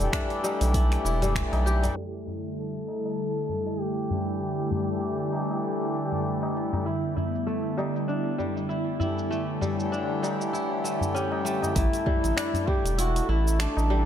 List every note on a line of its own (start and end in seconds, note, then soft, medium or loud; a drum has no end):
0.00 1.94 E3 loud
0.00 0.43 G3 medium
0.00 1.35 A3 medium
0.00 1.95 A3 loud
0.00 1.96 D4 loud
0.00 0.74 E4 medium
0.00 1.96 G4 loud
0.00 1.98 E5 medium
0.00 open hi-hat soft
0.00 shaker soft
0.13 1.81 D4 medium
0.13 finger snap medium
0.13 kick loud
0.13 open hi-hat medium
0.13 shaker soft
0.30 open hi-hat soft
0.44 1.21 G3 medium
0.44 tabla na medium
0.44 shaker medium
0.61 0.97 B1 medium
0.61 open hi-hat soft
0.61 tabla na medium
0.61 tabla tin medium
0.61 shaker soft
0.74 1.04 E4 medium
0.74 kick loud
0.74 open hi-hat medium
0.74 shaker soft
0.92 finger snap soft
0.92 open hi-hat soft
0.92 tabla tin medium
1.05 1.42 E1 medium
1.05 2.61 E4 medium
1.05 tabla tin medium
1.05 shaker medium
1.22 1.82 G3 medium
1.22 open hi-hat soft
1.22 tabla ge medium
1.22 shaker soft
1.35 3.35 A3 medium
1.35 finger snap loud
1.35 kick loud
1.35 open hi-hat medium
1.35 shaker soft
1.52 1.89 B1 loud
1.52 open hi-hat soft
1.52 tabla na medium
1.66 3.07 G4 loud
1.66 shaker medium
1.83 2.02 G3 medium
1.83 open hi-hat soft
1.83 tabla na medium
1.83 tabla tin medium
1.83 tabla ge medium
1.83 shaker soft
1.96 11.72 D3 medium
1.96 6.82 G3 medium
1.96 6.82 A3 medium
1.96 11.72 E4 medium
1.96 11.78 A4 medium
2.27 tabla na soft
2.27 tabla ge medium
2.57 3.82 A4 loud
2.88 tabla na medium
3.05 tabla na medium
3.05 tabla tin soft
3.49 tabla tin soft
3.49 tabla ge medium
3.67 tabla tin medium
3.80 6.56 G4 medium
4.10 4.69 E3 medium
4.10 4.69 A3 medium
4.10 4.70 D4 medium
4.10 4.70 G4 medium
4.10 tabla ge medium
4.10 shaker medium
4.29 shaker soft
4.42 shaker soft
4.71 4.87 E3 medium
4.71 4.87 A3 medium
4.71 4.87 D4 medium
4.71 4.88 G4 medium
4.71 tabla na soft
4.71 tabla ge medium
4.71 shaker medium
4.88 6.84 E3 loud
4.88 6.85 A3 medium
4.88 6.85 D4 medium
4.88 6.86 G4 loud
4.88 shaker soft
5.03 shaker soft
5.33 tabla na medium
5.33 shaker medium
5.50 tabla na medium
5.50 tabla tin medium
5.50 shaker soft
5.65 shaker soft
5.81 tabla tin medium
5.95 tabla tin soft
5.95 shaker medium
6.12 tabla ge medium
6.12 shaker soft
6.26 shaker soft
6.43 tabla na medium
6.57 shaker medium
6.73 tabla na medium
6.73 tabla tin soft
6.73 tabla ge medium
6.73 shaker soft
6.86 11.72 G3 medium
6.86 9.29 B3 medium
6.86 7.16 E4 medium
6.86 shaker soft
7.17 8.68 E4 medium
7.17 tabla na soft
7.17 tabla ge medium
7.17 shaker medium
7.35 shaker soft
7.47 9.30 A3 medium
7.47 shaker soft
7.77 8.37 G3 medium
7.77 tabla na medium
7.77 shaker medium
7.95 tabla na medium
7.95 tabla tin medium
7.95 shaker soft
8.08 9.76 D4 medium
8.08 shaker soft
8.38 9.60 G3 medium
8.38 tabla tin soft
8.38 tabla ge medium
8.38 shaker medium
8.57 tabla tin soft
8.57 shaker soft
8.69 8.99 E4 medium
8.69 shaker soft
9.00 9.58 E3 medium
9.00 9.59 A3 medium
9.00 9.59 D4 medium
9.00 10.53 E4 medium
9.00 9.59 G4 medium
9.00 tabla ge medium
9.00 shaker medium
9.19 shaker soft
9.31 10.84 A3 medium
9.31 11.74 C#5 medium
9.31 shaker soft
9.61 9.76 E3 medium
9.61 10.22 G3 medium
9.61 9.76 A3 medium
9.61 9.77 D4 medium
9.61 9.77 G4 medium
9.61 tabla na soft
9.61 tabla ge medium
9.61 shaker medium
9.78 11.75 D3 medium
9.78 11.74 E3 loud
9.78 11.74 A3 medium
9.78 11.76 G4 loud
9.78 shaker soft
9.92 11.21 D4 medium
9.92 shaker soft
10.23 11.81 G3 medium
10.23 tabla na medium
10.23 shaker medium
10.40 tabla na medium
10.40 tabla tin soft
10.40 shaker soft
10.53 12.10 E4 medium
10.53 shaker soft
10.70 tabla tin medium
10.84 11.44 A3 medium
10.84 tabla tin soft
10.84 shaker medium
11.01 tabla ge medium
11.01 shaker soft
11.15 12.43 C#4 medium
11.15 11.72 G4 loud
11.15 shaker soft
11.32 tabla na medium
11.45 11.75 A3 medium
11.45 shaker medium
11.63 tabla na medium
11.63 tabla tin soft
11.63 tabla ge medium
11.63 shaker soft
11.75 11.87 A1 loud
11.75 13.59 A3 medium
11.75 14.05 E4 medium
11.75 12.70 E4 loud
11.75 14.05 A4 medium
11.75 14.05 E5 medium
11.75 14.05 A5 medium
11.75 kick loud
11.75 open hi-hat medium
11.75 tabla na medium
11.75 shaker medium
11.93 open hi-hat soft
11.93 shaker soft
12.06 12.66 G3 medium
12.06 kick loud
12.06 tabla ge medium
12.23 12.32 A1 medium
12.23 open hi-hat soft
12.23 tabla na medium
12.23 shaker medium
12.37 14.04 D4 medium
12.37 finger snap loud
12.37 open hi-hat medium
12.37 shaker medium
12.54 open hi-hat soft
12.54 tabla na soft
12.54 tabla ge medium
12.54 shaker soft
12.67 13.89 G3 medium
12.67 12.99 G4 loud
12.67 kick loud
12.85 13.21 E1 loud
12.85 open hi-hat soft
12.85 tabla tin medium
12.85 shaker medium
12.98 13.28 E4 medium
12.98 13.27 F#4 loud
12.98 open hi-hat medium
12.98 shaker medium
13.16 open hi-hat soft
13.16 tabla na soft
13.16 shaker soft
13.29 13.67 A1 loud
13.29 14.05 E4 medium
13.29 13.62 E4 medium
13.29 tabla tin medium
13.47 tabla tin medium
13.47 shaker medium
13.59 14.05 A3 medium
13.59 14.05 D4 loud
13.59 finger snap loud
13.59 open hi-hat medium
13.59 shaker medium
13.77 14.05 A1 loud
13.77 tabla na medium
13.77 shaker soft
13.89 14.05 E3 medium
13.89 14.05 G3 medium
13.89 14.05 A3 medium
13.89 14.05 D4 medium
13.89 14.05 G4 medium